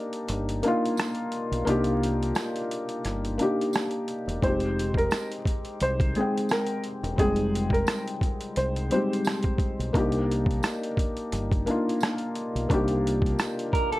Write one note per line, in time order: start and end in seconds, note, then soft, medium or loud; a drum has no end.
0.00 0.63 A#3 medium
0.00 0.64 D4 medium
0.00 0.66 D#4 medium
0.00 1.70 G4 medium
0.13 closed hi-hat soft
0.28 0.61 G1 medium
0.28 closed hi-hat medium
0.49 closed hi-hat soft
0.63 1.31 A#3 medium
0.63 1.31 D4 medium
0.63 1.32 D#4 medium
0.63 closed hi-hat medium
0.67 1.33 F4 loud
0.85 closed hi-hat soft
0.97 cross-stick loud
0.97 closed hi-hat medium
0.97 tambourine medium
1.15 closed hi-hat soft
1.32 closed hi-hat medium
1.52 1.66 B1 medium
1.52 closed hi-hat soft
1.65 2.32 C2 medium
1.65 2.57 A#3 loud
1.65 2.58 D4 medium
1.65 2.59 D#4 medium
1.65 closed hi-hat medium
1.70 2.60 G4 loud
1.84 closed hi-hat soft
2.03 closed hi-hat medium
2.23 closed hi-hat soft
2.35 cross-stick loud
2.35 closed hi-hat medium
2.35 tambourine medium
2.56 closed hi-hat soft
2.71 closed hi-hat medium
2.89 closed hi-hat soft
3.05 3.37 G1 medium
3.05 cross-stick soft
3.05 closed hi-hat medium
3.25 closed hi-hat soft
3.38 4.06 A#3 medium
3.38 4.07 D4 medium
3.38 4.08 D#4 medium
3.38 closed hi-hat medium
3.43 4.09 G4 medium
3.61 closed hi-hat soft
3.73 cross-stick loud
3.73 closed hi-hat medium
3.73 tambourine medium
3.91 closed hi-hat soft
4.08 closed hi-hat medium
4.27 4.42 E1 medium
4.27 closed hi-hat soft
4.42 5.08 F1 loud
4.42 5.34 G#3 medium
4.42 5.35 C4 medium
4.42 5.35 D#4 medium
4.42 4.93 C5 medium
4.42 kick loud
4.42 closed hi-hat medium
4.47 5.36 G4 medium
4.60 closed hi-hat soft
4.79 closed hi-hat medium
4.94 5.28 A#4 medium
4.94 kick medium
4.98 closed hi-hat soft
5.11 cross-stick loud
5.11 closed hi-hat medium
5.11 tambourine medium
5.32 closed hi-hat medium
5.45 kick medium
5.45 closed hi-hat medium
5.65 closed hi-hat soft
5.80 6.13 C2 medium
5.80 6.12 C5 medium
5.80 closed hi-hat medium
6.00 kick loud
6.00 closed hi-hat soft
6.15 6.83 G#3 medium
6.15 6.84 C4 medium
6.15 6.85 D#4 medium
6.15 6.47 G#4 medium
6.15 closed hi-hat soft
6.21 6.86 G5 medium
6.38 closed hi-hat soft
6.49 6.81 A#4 medium
6.49 cross-stick loud
6.49 closed hi-hat medium
6.49 tambourine medium
6.67 closed hi-hat soft
6.84 closed hi-hat medium
7.03 7.18 E1 medium
7.03 closed hi-hat soft
7.16 7.83 F1 loud
7.16 7.24 G3 medium
7.16 8.10 C4 medium
7.16 8.10 D#4 medium
7.16 7.69 G#4 loud
7.16 kick loud
7.16 closed hi-hat medium
7.21 8.12 G#3 medium
7.21 8.11 G5 medium
7.36 closed hi-hat soft
7.55 closed hi-hat medium
7.70 8.03 A#4 medium
7.70 kick loud
7.74 closed hi-hat soft
7.87 cross-stick loud
7.87 closed hi-hat medium
7.87 tambourine medium
8.07 closed hi-hat soft
8.21 kick medium
8.21 closed hi-hat medium
8.41 closed hi-hat medium
8.56 8.89 C2 medium
8.56 8.88 C5 medium
8.56 closed hi-hat medium
8.76 closed hi-hat soft
8.90 8.97 G3 medium
8.90 9.59 C4 medium
8.90 9.60 D#4 medium
8.90 9.91 C5 medium
8.90 closed hi-hat medium
8.94 9.61 G#3 medium
8.94 9.60 G4 medium
9.13 closed hi-hat soft
9.25 cross-stick loud
9.25 closed hi-hat medium
9.25 tambourine medium
9.43 kick medium
9.43 closed hi-hat soft
9.58 kick medium
9.58 closed hi-hat medium
9.79 9.93 B1 medium
9.79 closed hi-hat soft
9.93 10.59 C2 loud
9.93 10.85 A#3 medium
9.93 10.86 D4 medium
9.93 10.87 D#4 medium
9.93 kick loud
9.93 closed hi-hat medium
9.98 10.87 G4 medium
10.12 closed hi-hat soft
10.31 closed hi-hat medium
10.46 kick loud
10.51 closed hi-hat soft
10.63 cross-stick loud
10.63 closed hi-hat medium
10.63 tambourine medium
10.83 closed hi-hat soft
10.97 kick medium
10.97 closed hi-hat medium
11.17 closed hi-hat soft
11.32 11.64 G1 medium
11.32 closed hi-hat medium
11.52 kick loud
11.52 closed hi-hat medium
11.66 12.34 A#3 loud
11.66 12.35 D4 medium
11.66 12.36 D#4 medium
11.66 closed hi-hat medium
11.71 12.36 F4 medium
11.89 closed hi-hat soft
12.01 cross-stick loud
12.01 closed hi-hat medium
12.01 tambourine medium
12.18 closed hi-hat soft
12.35 closed hi-hat medium
12.55 12.69 B1 medium
12.55 closed hi-hat soft
12.69 13.35 C2 loud
12.69 13.61 A#3 medium
12.69 13.62 D4 medium
12.69 13.63 D#4 medium
12.69 kick loud
12.69 closed hi-hat medium
12.73 13.63 G4 loud
12.88 closed hi-hat soft
13.07 closed hi-hat medium
13.22 kick medium
13.26 closed hi-hat soft
13.39 cross-stick loud
13.39 closed hi-hat medium
13.39 tambourine medium
13.59 closed hi-hat soft
13.73 13.91 A#4 medium
13.73 kick medium
13.73 closed hi-hat medium
13.92 13.99 A4 medium
13.92 closed hi-hat soft